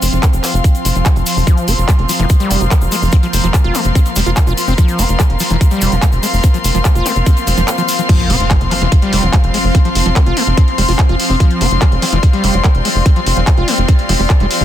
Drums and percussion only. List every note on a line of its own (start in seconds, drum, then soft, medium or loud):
0.02 open hi-hat loud
0.02 shaker loud
0.13 closed hi-hat soft
0.13 shaker soft
0.23 kick loud
0.23 clap loud
0.23 closed hi-hat medium
0.23 shaker medium
0.33 closed hi-hat soft
0.33 shaker soft
0.44 clap soft
0.44 open hi-hat loud
0.44 shaker medium
0.54 closed hi-hat soft
0.54 shaker soft
0.64 kick loud
0.64 closed hi-hat medium
0.64 shaker medium
0.75 closed hi-hat soft
0.75 shaker soft
0.85 open hi-hat loud
0.85 shaker loud
0.95 closed hi-hat soft
0.95 shaker soft
1.05 kick loud
1.05 clap loud
1.05 closed hi-hat medium
1.05 shaker medium
1.16 closed hi-hat soft
1.16 shaker soft
1.26 open hi-hat loud
1.26 shaker loud
1.37 shaker soft
1.47 kick loud
1.47 closed hi-hat medium
1.47 shaker medium
1.57 closed hi-hat soft
1.57 shaker soft
1.68 open hi-hat loud
1.68 shaker medium
1.78 closed hi-hat soft
1.78 shaker soft
1.88 kick loud
1.88 clap loud
1.88 closed hi-hat medium
1.88 shaker soft
1.99 closed hi-hat soft
2.09 open hi-hat loud
2.09 shaker medium
2.19 shaker soft
2.29 kick loud
2.29 closed hi-hat medium
2.29 shaker medium
2.40 closed hi-hat soft
2.40 shaker soft
2.51 open hi-hat loud
2.51 shaker medium
2.61 closed hi-hat soft
2.61 shaker soft
2.71 kick loud
2.71 clap loud
2.71 closed hi-hat medium
2.71 shaker soft
2.81 closed hi-hat soft
2.81 shaker soft
2.92 open hi-hat loud
2.92 shaker loud
3.02 shaker soft
3.12 kick loud
3.12 closed hi-hat medium
3.12 shaker soft
3.23 closed hi-hat soft
3.23 shaker soft
3.33 open hi-hat loud
3.33 shaker medium
3.44 closed hi-hat soft
3.44 shaker soft
3.54 kick loud
3.54 clap loud
3.54 closed hi-hat medium
3.54 shaker soft
3.64 closed hi-hat soft
3.75 clap soft
3.75 open hi-hat loud
3.75 shaker medium
3.84 closed hi-hat soft
3.84 shaker soft
3.95 kick loud
3.95 closed hi-hat medium
3.95 shaker medium
4.06 closed hi-hat soft
4.06 shaker soft
4.16 open hi-hat loud
4.16 shaker medium
4.26 closed hi-hat soft
4.26 shaker soft
4.36 kick loud
4.36 clap loud
4.36 closed hi-hat medium
4.36 shaker medium
4.47 closed hi-hat soft
4.47 shaker soft
4.57 open hi-hat loud
4.57 shaker medium
4.68 shaker soft
4.78 kick loud
4.78 closed hi-hat loud
4.78 shaker soft
4.88 closed hi-hat soft
4.88 shaker soft
4.99 open hi-hat loud
4.99 shaker medium
5.09 closed hi-hat soft
5.09 shaker soft
5.20 kick loud
5.20 clap loud
5.20 closed hi-hat loud
5.20 shaker medium
5.30 closed hi-hat soft
5.39 open hi-hat loud
5.39 shaker medium
5.50 closed hi-hat soft
5.50 shaker soft
5.61 kick loud
5.61 closed hi-hat loud
5.61 shaker medium
5.71 closed hi-hat soft
5.71 shaker soft
5.81 open hi-hat loud
5.81 shaker medium
5.92 closed hi-hat soft
5.92 shaker soft
6.02 kick loud
6.02 clap loud
6.02 closed hi-hat medium
6.02 shaker soft
6.12 closed hi-hat soft
6.12 shaker soft
6.23 open hi-hat loud
6.23 shaker medium
6.34 shaker soft
6.43 kick loud
6.43 closed hi-hat loud
6.43 shaker medium
6.54 closed hi-hat soft
6.54 shaker soft
6.64 open hi-hat loud
6.64 shaker medium
6.75 closed hi-hat soft
6.75 shaker soft
6.85 kick loud
6.85 clap loud
6.85 closed hi-hat loud
6.85 shaker medium
6.95 closed hi-hat soft
6.95 shaker soft
7.06 clap soft
7.06 open hi-hat loud
7.06 shaker loud
7.15 closed hi-hat soft
7.15 shaker soft
7.26 kick loud
7.26 closed hi-hat loud
7.26 shaker medium
7.37 closed hi-hat soft
7.37 shaker soft
7.47 open hi-hat loud
7.47 shaker medium
7.57 closed hi-hat soft
7.57 shaker soft
7.68 clap loud
7.68 closed hi-hat loud
7.68 shaker medium
7.78 closed hi-hat soft
7.78 shaker soft
7.88 open hi-hat loud
7.88 shaker medium
7.99 closed hi-hat soft
7.99 shaker soft
8.09 kick loud
8.09 closed hi-hat loud
8.09 crash loud
8.20 closed hi-hat soft
8.30 open hi-hat loud
8.40 closed hi-hat soft
8.51 kick loud
8.51 clap loud
8.51 closed hi-hat loud
8.61 closed hi-hat soft
8.71 clap soft
8.71 open hi-hat loud
8.82 closed hi-hat soft
8.92 kick loud
8.92 closed hi-hat medium
9.02 closed hi-hat soft
9.13 open hi-hat loud
9.23 closed hi-hat soft
9.33 kick loud
9.33 clap loud
9.33 closed hi-hat loud
9.44 closed hi-hat soft
9.54 open hi-hat loud
9.75 kick loud
9.75 closed hi-hat loud
9.85 closed hi-hat soft
9.95 open hi-hat loud
10.06 closed hi-hat soft
10.16 kick loud
10.16 clap loud
10.16 closed hi-hat medium
10.26 closed hi-hat soft
10.37 open hi-hat loud
10.47 closed hi-hat soft
10.57 kick loud
10.57 closed hi-hat medium
10.68 closed hi-hat soft
10.78 open hi-hat loud
10.89 open hi-hat medium
10.99 kick loud
10.99 clap loud
10.99 closed hi-hat medium
11.09 closed hi-hat soft
11.20 open hi-hat loud
11.40 kick loud
11.40 closed hi-hat medium
11.51 closed hi-hat soft
11.61 open hi-hat loud
11.71 closed hi-hat soft
11.82 kick loud
11.82 clap loud
11.82 closed hi-hat medium
11.92 closed hi-hat soft
12.02 clap soft
12.02 open hi-hat loud
12.13 closed hi-hat soft
12.23 kick loud
12.23 closed hi-hat medium
12.33 closed hi-hat soft
12.44 open hi-hat loud
12.54 closed hi-hat soft
12.64 kick loud
12.64 clap loud
12.64 closed hi-hat medium
12.75 closed hi-hat soft
12.85 open hi-hat loud
13.06 kick loud
13.06 closed hi-hat medium
13.16 closed hi-hat soft
13.26 open hi-hat loud
13.37 closed hi-hat soft
13.47 kick loud
13.47 clap loud
13.47 closed hi-hat medium
13.57 closed hi-hat soft
13.68 open hi-hat loud
13.78 closed hi-hat soft
13.88 kick loud
13.88 closed hi-hat medium
13.99 closed hi-hat soft
14.09 open hi-hat loud
14.20 open hi-hat medium
14.30 kick loud
14.30 clap loud
14.30 closed hi-hat medium
14.40 closed hi-hat soft
14.51 open hi-hat loud